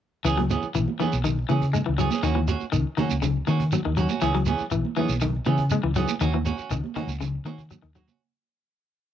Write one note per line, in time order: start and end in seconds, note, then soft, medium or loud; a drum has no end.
0.25 0.55 C#2 loud
0.25 0.32 E3 medium
0.25 0.40 E3 medium
0.25 0.40 B3 medium
0.25 0.40 C#4 medium
0.25 0.40 G#4 medium
0.25 cajon bass medium
0.25 shekere medium
0.38 0.51 F#3 medium
0.38 cajon bass medium
0.38 high conga medium
0.50 0.65 E3 medium
0.50 0.65 B3 medium
0.50 0.65 C#4 medium
0.50 0.65 G#4 medium
0.50 cajon slap medium
0.50 high conga medium
0.50 shekere medium
0.62 muted fingered electric bass stroke soft
0.62 cajon slap soft
0.62 shekere soft
0.75 0.85 B1 medium
0.75 0.88 E3 medium
0.75 cajon slap soft
0.75 shekere medium
0.88 high conga medium
1.00 1.14 E3 medium
1.00 1.13 E3 medium
1.00 1.15 B3 medium
1.00 1.15 C#4 medium
1.00 1.15 G#4 medium
1.00 muted fingered electric bass stroke soft
1.00 cajon slap soft
1.00 high conga medium
1.00 low conga medium
1.00 shekere soft
1.12 1.43 B1 medium
1.12 shekere medium
1.24 1.38 D#3 medium
1.24 cajon bass medium
1.24 cajon slap soft
1.24 low conga medium
1.24 shekere medium
1.37 cajon slap soft
1.49 1.79 C#3 medium
1.49 1.62 E3 medium
1.49 1.64 E3 medium
1.49 1.64 C#4 medium
1.49 1.65 G#4 medium
1.49 muted clean electric guitar stroke medium
1.49 cajon slap soft
1.49 high conga medium
1.49 shekere soft
1.62 cajon bass medium
1.62 shekere soft
1.73 1.80 G#3 medium
1.73 cajon slap soft
1.73 high conga medium
1.73 low conga medium
1.73 shekere medium
1.86 2.07 C#2 medium
1.86 1.93 E3 medium
1.98 2.11 E3 medium
1.98 2.12 F#3 medium
1.98 2.11 B3 medium
1.98 2.10 C#4 medium
1.98 2.10 G#4 medium
1.98 cajon bass medium
1.98 low conga medium
1.98 shekere medium
2.10 2.22 B3 soft
2.10 2.22 C#4 medium
2.10 2.23 G#4 medium
2.10 cajon slap soft
2.10 high conga medium
2.10 shekere medium
2.22 2.53 D#2 loud
2.22 2.30 D#3 medium
2.22 2.38 A#3 medium
2.22 2.38 C#4 medium
2.22 2.38 F#4 medium
2.22 cajon bass medium
2.22 shekere medium
2.35 2.49 E3 medium
2.35 high conga medium
2.48 2.63 A#3 medium
2.48 2.63 C#4 medium
2.48 2.64 F#4 medium
2.48 cajon slap medium
2.48 high conga loud
2.48 shekere medium
2.60 muted fingered electric bass stroke soft
2.60 cajon slap soft
2.60 shekere soft
2.72 2.84 C#2 medium
2.72 2.86 D#3 medium
2.72 cajon slap soft
2.72 shekere medium
2.86 cajon slap soft
2.97 3.11 D#3 medium
2.97 3.13 A#3 medium
2.97 3.13 C#4 medium
2.97 3.13 F#4 medium
2.97 muted fingered electric bass stroke soft
2.97 cajon bass medium
2.97 high conga medium
2.97 low conga medium
2.97 shekere soft
3.10 3.41 C#2 medium
3.10 cajon slap soft
3.10 shekere medium
3.22 3.36 C#3 medium
3.22 cajon bass medium
3.22 low conga medium
3.22 shekere medium
3.47 3.61 D#3 medium
3.47 3.78 D#3 medium
3.47 3.62 A#3 medium
3.47 3.63 C#4 medium
3.47 3.63 F#4 medium
3.47 high conga medium
3.47 shekere soft
3.60 cajon bass medium
3.60 shekere soft
3.72 3.80 F#3 medium
3.72 cajon slap soft
3.72 high conga medium
3.72 low conga medium
3.72 shekere medium
3.84 4.05 D#2 medium
3.84 3.92 D#3 medium
3.84 cajon slap soft
3.97 4.11 F#3 medium
3.97 4.10 A#3 medium
3.97 4.09 C#4 medium
3.97 4.08 F#4 medium
3.97 cajon bass medium
3.97 low conga medium
3.97 shekere medium
4.09 4.20 C#4 soft
4.09 4.21 F#4 medium
4.09 cajon slap soft
4.09 high conga medium
4.09 shekere medium
4.21 4.52 C#2 loud
4.21 4.37 E3 medium
4.21 4.29 E3 medium
4.21 4.37 B3 medium
4.21 4.37 C#4 medium
4.21 4.37 G#4 medium
4.21 cajon bass medium
4.21 shekere medium
4.34 4.48 F#3 medium
4.34 cajon bass medium
4.46 4.62 E3 medium
4.46 4.62 B3 medium
4.46 4.62 C#4 medium
4.46 4.63 G#4 medium
4.46 cajon slap medium
4.46 high conga medium
4.46 shekere medium
4.58 muted fingered electric bass stroke soft
4.58 cajon slap soft
4.58 shekere soft
4.71 4.82 B1 medium
4.71 4.85 E3 medium
4.71 cajon slap soft
4.71 shekere medium
4.85 high conga medium
4.96 5.12 E3 medium
4.96 5.10 E3 medium
4.96 5.12 B3 medium
4.96 5.12 C#4 medium
4.96 5.12 G#4 medium
4.96 muted fingered electric bass stroke soft
4.96 cajon slap soft
4.96 high conga medium
4.96 low conga medium
4.96 shekere soft
5.09 5.39 B1 medium
5.09 shekere medium
5.21 5.35 D#3 medium
5.21 cajon bass medium
5.21 cajon slap soft
5.21 low conga medium
5.21 shekere medium
5.34 cajon slap soft
5.45 5.77 C#3 medium
5.45 5.61 E3 medium
5.45 5.60 E3 medium
5.45 5.62 B3 medium
5.45 5.62 C#4 medium
5.45 5.62 G#4 medium
5.45 cajon slap soft
5.45 high conga medium
5.45 shekere soft
5.57 cajon bass medium
5.57 shekere soft
5.70 5.78 G#3 medium
5.70 high conga medium
5.70 low conga medium
5.70 shekere medium
5.83 6.04 C#2 medium
5.83 5.90 E3 medium
5.83 cajon slap soft
5.95 6.11 E3 medium
5.95 6.10 F#3 medium
5.95 6.11 B3 medium
5.95 6.11 C#4 medium
5.95 6.12 G#4 medium
5.95 cajon bass medium
5.95 low conga medium
5.95 shekere medium
6.08 cajon slap soft
6.08 high conga medium
6.08 shekere medium
6.21 6.51 D#2 loud
6.21 6.28 D#3 medium
6.21 6.36 A#3 medium
6.21 6.36 C#4 medium
6.21 6.36 F#4 medium
6.21 cajon bass medium
6.21 shekere medium
6.34 6.47 E3 medium
6.34 high conga medium
6.45 6.58 A#3 medium
6.45 6.57 C#4 medium
6.45 6.56 F#4 medium
6.45 cajon slap medium
6.45 high conga loud
6.45 shekere medium
6.57 6.73 C#4 soft
6.57 6.73 F#4 soft
6.57 muted fingered electric bass stroke soft
6.57 cajon slap soft
6.57 shekere soft
6.70 6.81 C#2 medium
6.70 6.85 D#3 medium
6.70 cajon slap soft
6.70 shekere medium
6.84 cajon slap soft
6.84 high conga medium
6.94 7.10 D#3 medium
6.94 7.10 A#3 medium
6.94 7.11 C#4 medium
6.94 7.11 F#4 medium
6.94 muted fingered electric bass stroke soft
6.94 cajon bass medium
6.94 high conga medium
6.94 low conga medium
6.94 shekere soft
7.07 7.38 C#2 medium
7.07 shekere medium
7.21 7.34 C#3 medium
7.21 cajon bass medium
7.21 low conga medium
7.21 shekere medium
7.45 7.75 D#3 medium
7.45 7.59 D#3 medium
7.45 7.60 A#3 medium
7.45 7.61 C#4 medium
7.45 7.61 F#4 medium
7.45 cajon slap soft
7.45 high conga medium
7.45 shekere soft
7.58 cajon bass medium
7.58 shekere soft
7.71 7.77 F#3 medium
7.71 cajon bass soft
7.71 cajon slap soft
7.71 high conga medium
7.71 low conga medium
7.71 shekere medium
7.82 8.03 D#2 medium
7.82 7.89 D#3 medium
7.82 cajon slap soft
7.95 8.09 F#3 medium
7.95 8.08 A#3 medium
7.95 8.07 F#4 medium
7.95 muted clean electric guitar stroke medium
7.95 cajon slap medium
7.95 low conga medium
7.95 shekere medium
8.08 8.21 C#4 soft
8.08 8.20 F#4 medium
8.08 cajon bass medium
8.08 high conga medium
8.08 shekere medium